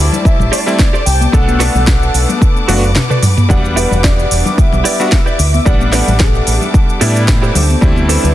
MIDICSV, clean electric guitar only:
0, 0, Header, 1, 3, 480
1, 0, Start_track
1, 0, Key_signature, 1, "minor"
1, 0, Tempo, 540541
1, 1187, Time_signature, 4, 2, 24, 8
1, 7409, End_track
2, 0, Start_track
2, 0, Title_t, "Clean electric guitar"
2, 0, Program_c, 0, 27
2, 459, Note_on_c, 0, 67, 111
2, 462, Note_on_c, 0, 69, 99
2, 467, Note_on_c, 0, 72, 95
2, 467, Note_on_c, 0, 74, 122
2, 648, Note_off_c, 0, 67, 0
2, 649, Note_off_c, 0, 69, 0
2, 651, Note_off_c, 0, 72, 0
2, 652, Note_off_c, 0, 74, 0
2, 828, Note_on_c, 0, 67, 85
2, 830, Note_on_c, 0, 69, 78
2, 838, Note_on_c, 0, 72, 73
2, 838, Note_on_c, 0, 74, 99
2, 943, Note_off_c, 0, 67, 0
2, 945, Note_off_c, 0, 69, 0
2, 946, Note_off_c, 0, 72, 0
2, 948, Note_off_c, 0, 74, 0
2, 1417, Note_on_c, 0, 66, 118
2, 1420, Note_on_c, 0, 69, 99
2, 1421, Note_on_c, 0, 71, 103
2, 1425, Note_on_c, 0, 74, 125
2, 1551, Note_off_c, 0, 66, 0
2, 1552, Note_off_c, 0, 69, 0
2, 1553, Note_off_c, 0, 71, 0
2, 1555, Note_off_c, 0, 74, 0
2, 2380, Note_on_c, 0, 66, 111
2, 2386, Note_on_c, 0, 69, 84
2, 2386, Note_on_c, 0, 71, 105
2, 2390, Note_on_c, 0, 74, 100
2, 2569, Note_off_c, 0, 66, 0
2, 2570, Note_off_c, 0, 69, 0
2, 2572, Note_off_c, 0, 71, 0
2, 2572, Note_off_c, 0, 74, 0
2, 2750, Note_on_c, 0, 66, 81
2, 2756, Note_on_c, 0, 71, 79
2, 2758, Note_on_c, 0, 69, 65
2, 2760, Note_on_c, 0, 74, 94
2, 2865, Note_off_c, 0, 66, 0
2, 2866, Note_off_c, 0, 69, 0
2, 2867, Note_off_c, 0, 71, 0
2, 2869, Note_off_c, 0, 74, 0
2, 3340, Note_on_c, 0, 64, 110
2, 3344, Note_on_c, 0, 67, 97
2, 3348, Note_on_c, 0, 71, 85
2, 3349, Note_on_c, 0, 74, 124
2, 3473, Note_off_c, 0, 64, 0
2, 3475, Note_off_c, 0, 67, 0
2, 3476, Note_off_c, 0, 71, 0
2, 3478, Note_off_c, 0, 74, 0
2, 4299, Note_on_c, 0, 64, 110
2, 4302, Note_on_c, 0, 67, 113
2, 4307, Note_on_c, 0, 71, 86
2, 4308, Note_on_c, 0, 74, 119
2, 4488, Note_off_c, 0, 64, 0
2, 4490, Note_off_c, 0, 67, 0
2, 4491, Note_off_c, 0, 71, 0
2, 4492, Note_off_c, 0, 74, 0
2, 4669, Note_on_c, 0, 67, 81
2, 4671, Note_on_c, 0, 64, 74
2, 4675, Note_on_c, 0, 71, 77
2, 4679, Note_on_c, 0, 74, 82
2, 4783, Note_off_c, 0, 64, 0
2, 4784, Note_off_c, 0, 67, 0
2, 4786, Note_off_c, 0, 71, 0
2, 4787, Note_off_c, 0, 74, 0
2, 5261, Note_on_c, 0, 64, 117
2, 5263, Note_on_c, 0, 67, 105
2, 5267, Note_on_c, 0, 69, 100
2, 5269, Note_on_c, 0, 74, 125
2, 5393, Note_off_c, 0, 64, 0
2, 5395, Note_off_c, 0, 67, 0
2, 5396, Note_off_c, 0, 69, 0
2, 5398, Note_off_c, 0, 74, 0
2, 6223, Note_on_c, 0, 64, 92
2, 6223, Note_on_c, 0, 67, 102
2, 6226, Note_on_c, 0, 69, 102
2, 6230, Note_on_c, 0, 74, 123
2, 6409, Note_off_c, 0, 64, 0
2, 6410, Note_off_c, 0, 67, 0
2, 6411, Note_off_c, 0, 69, 0
2, 6413, Note_off_c, 0, 74, 0
2, 6590, Note_on_c, 0, 64, 89
2, 6593, Note_on_c, 0, 67, 83
2, 6598, Note_on_c, 0, 69, 75
2, 6599, Note_on_c, 0, 72, 97
2, 6690, Note_off_c, 0, 67, 0
2, 6694, Note_off_c, 0, 69, 0
2, 6697, Note_off_c, 0, 72, 0
2, 6698, Note_on_c, 0, 62, 89
2, 6703, Note_on_c, 0, 69, 81
2, 6704, Note_off_c, 0, 64, 0
2, 6705, Note_on_c, 0, 67, 79
2, 6710, Note_on_c, 0, 72, 87
2, 7095, Note_off_c, 0, 62, 0
2, 7096, Note_off_c, 0, 67, 0
2, 7097, Note_off_c, 0, 69, 0
2, 7099, Note_off_c, 0, 72, 0
2, 7180, Note_on_c, 0, 62, 108
2, 7185, Note_on_c, 0, 67, 97
2, 7187, Note_on_c, 0, 69, 108
2, 7191, Note_on_c, 0, 72, 110
2, 7313, Note_off_c, 0, 62, 0
2, 7314, Note_off_c, 0, 67, 0
2, 7317, Note_off_c, 0, 69, 0
2, 7318, Note_off_c, 0, 72, 0
2, 7409, End_track
3, 0, Start_track
3, 0, Title_t, "Muted clean electric guitar strokes"
3, 222, Note_on_c, 9, 29, 33
3, 311, Note_off_c, 9, 29, 0
3, 1068, Note_on_c, 9, 29, 33
3, 1156, Note_off_c, 9, 29, 0
3, 1659, Note_on_c, 9, 29, 88
3, 1748, Note_off_c, 9, 29, 0
3, 1788, Note_on_c, 9, 29, 33
3, 1876, Note_off_c, 9, 29, 0
3, 2141, Note_on_c, 9, 29, 32
3, 2229, Note_off_c, 9, 29, 0
3, 2989, Note_on_c, 9, 29, 33
3, 3078, Note_off_c, 9, 29, 0
3, 3584, Note_on_c, 9, 29, 88
3, 3673, Note_off_c, 9, 29, 0
3, 3714, Note_on_c, 9, 29, 33
3, 3803, Note_off_c, 9, 29, 0
3, 4062, Note_on_c, 9, 29, 33
3, 4151, Note_off_c, 9, 29, 0
3, 4910, Note_on_c, 9, 29, 34
3, 4998, Note_off_c, 9, 29, 0
3, 5500, Note_on_c, 9, 29, 88
3, 5589, Note_off_c, 9, 29, 0
3, 5631, Note_on_c, 9, 29, 33
3, 5720, Note_off_c, 9, 29, 0
3, 5982, Note_on_c, 9, 29, 33
3, 6071, Note_off_c, 9, 29, 0
3, 7409, End_track
0, 0, End_of_file